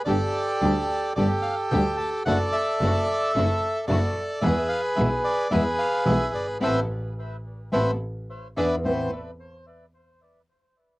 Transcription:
<<
  \new Staff \with { instrumentName = "Bandoneon" } { \time 4/4 \key a \minor \tempo 4 = 109 << { d''2 d''8 f''8 g''8 a''8 | fis''8 e''2~ e''8 d''4 | e''8 f''8 e''8 d''8 e''8 f''8 e''8 d''8 | <b' c'' e''>8 r4. <b' c'' e''>8 r4 <b' d'' e''>8 |
c''8 r2. r8 | } \\ { <g' a'>2 <g' a'>2 | <a' d''>8 a'2~ a'8 a'4 | <gis' b'>2 <gis' b'>2 | r1 |
r1 | } >> }
  \new Staff \with { instrumentName = "String section" } { \time 4/4 \key a \minor <a d' g'>8 r8 <a d' g'>8 r8 <a d' g'>8 r8 <a d' g'>8 r8 | <d' e' fis'>8 r8 <d' e' fis'>8 r8 <d' e' fis'>8 r8 <d' e' fis'>8 r8 | <b e' gis'>8 r8 <b e' gis'>8 r8 <b e' gis'>8 r8 <b e' gis'>8 r8 | <c' e' a'>8 r4. <c' e' a'>8 r4 <d' e' gis'>8 |
<c' a' b'>8 r2. r8 | }
  \new Staff \with { instrumentName = "Nylon-string guitar" } { \time 4/4 \key a \minor <d g d' g'>8 r8 <d g d' g'>8 r8 <d g d' g'>8 r8 <d g d' g'>8 r8 | <d a d' e'>8 r8 <d a d' e'>8 r8 <d a d' e'>8 r8 <d a d' e'>8 r8 | <b, e gis b e'>8 r8 <b, e gis b e'>8 r8 <b, e gis b e'>8 r8 <b, e gis b e'>8 r8 | <a b c'>8 r4. <a b c'>8 r4 <b d' e'>8 |
<a, e b c' e'>8 r2. r8 | }
  \new Staff \with { instrumentName = "Double bass" } { \clef bass \time 4/4 \key a \minor g,,8 r8 d,8 r8 g,,8 r8 d,8 r8 | fis,,8 r8 fis,,8 r8 fis,,8 r8 fis,,8 r8 | e,8 r8 b,,8 r8 e,8 r8 b,,8 g,,8 | a,,8 r4. a,,8 r4 e,8 |
a,,8 r2. r8 | }
>>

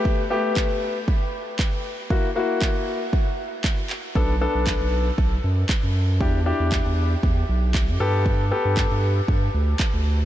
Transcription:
<<
  \new Staff \with { instrumentName = "Grand piano" } { \time 4/4 \key g \lydian \tempo 4 = 117 <a b g'>8 <a b g'>4. r2 | <ais e' fis'>8 <ais e' fis'>4. r2 | <b d' a'>8 <b d' a'>4. r2 | <d' e' g'>8 <d' e' g'>4. r4. <b g' a'>8~ |
<b g' a'>8 <b g' a'>4. r2 | }
  \new Staff \with { instrumentName = "Sub bass" } { \clef bass \time 4/4 \key g \lydian r1 | r1 | b,,8. b,,8 b,,8. b,,8 fis,8 r16 fis,8. | e,8. e,8 e,8. e,8 b,,8. fis,16 g,8~ |
g,8. g,8 g,8. g,8 d,8 r16 d,8. | }
  \new DrumStaff \with { instrumentName = "Drums" } \drummode { \time 4/4 bd4 <hc bd>4 bd4 <hc bd>4 | bd4 <hc bd>4 bd4 <hc bd>8 hc8 | bd4 <hc bd>4 bd4 <hc bd>4 | bd4 <hc bd>4 bd4 <hc bd>4 |
bd4 <hc bd>4 bd4 <hc bd>4 | }
>>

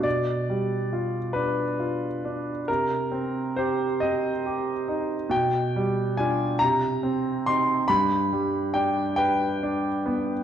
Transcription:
\new Staff \with { instrumentName = "Grand piano" } { \time 12/8 \key g \phrygian \tempo 4. = 46 << { d''4. b'4. bes'4 c''8 ees''4. | g''4 aes''8 bes''4 c'''8 b''4 g''8 g''4. | } \\ { b,8 g8 f'8 d'8 f'8 d'8 c8 c'8 g'8 c'8 g'8 ees'8 | b,8 g8 <d' f'>8 c8 c'8 <c' ees'>8 g,8 g8 d'8 b'8 d'8 b8 | } >> }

